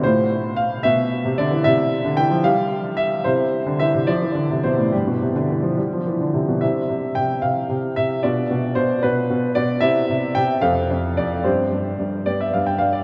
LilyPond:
<<
  \new Staff \with { instrumentName = "Grand piano" } { \time 6/8 \key c \major \tempo 4. = 74 << { c''4 f''8 e''4 d''8 | e''4 g''8 f''4 e''8 | c''4 e''8 d''4 c''8 | g'2~ g'8 r8 |
e''4 g''8 f''4 e''8 | d''4 c''8 b'4 d''8 | e''4 g''8 f''4 d''8 | c''4. d''16 e''16 f''16 g''16 f''16 d''16 | } \\ { f'4. r4. | e'4. r4. | e'4. r4. | e'4. r4. |
<c' e'>2. | <d' f'>2. | <c' e'>4. <c' a'>4. | <c' g'>4. <b g'>4. | } >> }
  \new Staff \with { instrumentName = "Grand piano" } { \clef bass \time 6/8 \key c \major a,4. b,8. c16 d16 e16 | c8. d16 e16 f16 g4. | c8. d16 e16 c16 f16 e16 d16 c16 b,16 a,16 | g,16 b,16 c16 d16 e16 f16 g16 f16 e16 d16 c16 b,16 |
c8 c8 c8 c8 c8 c8 | b,8 b,8 b,8 b,8 b,8 b,8 | c8 c8 c8 f,8 f,8 f,8 | g,8 g,8 g,8 g,8 g,8 g,8 | }
>>